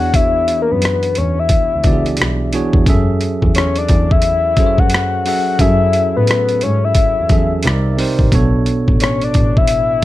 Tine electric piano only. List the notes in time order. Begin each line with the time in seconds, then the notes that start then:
Already playing: E3 B3 D4 F#4 G#4 C#5
1.84 E3 B3 D4 F#4 G4 D5
1.93 G#4
2.53 E3 B3 D4 F#4 G#4 C#5
2.86 F#3 C#4 G#4 A4 E5
4.57 F#3 C#4 G#4 A4 C5
4.66 C#5
5.25 F#3 C#4 G#4 A4 E5
5.59 F#3 C#4 G#4 A4 E5
7.30 F#3 C#4 G#4 A4 E5
7.64 C3 C4 D#4 A#4 D5
7.97 C3 C4 D#4 A#4 C5
8.32 B2 B3 D4 A4 C#5